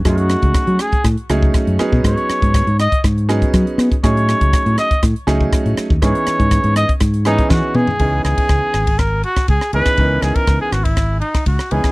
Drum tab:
RD |----------------|----------------|----------------|----------------|
HH |xxxxxxxxxxx-xxx-|xxxxxxxxxxxxxxxx|xxxxxxxxxxx-xxx-|xxxxxxxxxxxx----|
SD |r-r-r-r-r-r-r-r-|r-r-r-r-r-r-r-r-|r-r-r-r-r-r-r-r-|r-r-r-r-r-r-o---|
T2 |----------------|----------------|----------------|--------------o-|
FT |----------------|----------------|----------------|---------------o|
BD |o--oo--oo--oo--o|o--oo--oo--oo--o|o--oo--oo--oo--o|o--oo--oo--oo---|

RD |x-xxx-xxx-xxx-xx|x-xxx-xxx-xxx-xx|
HH |----------------|----------------|
SD |--r-r-r-r--r-r-r|--r-r-r-r--r-r-r|
T2 |----------------|----------------|
FT |----------------|----------------|
BD |o--oo--oo--oo--o|o--oo--oo--oo--o|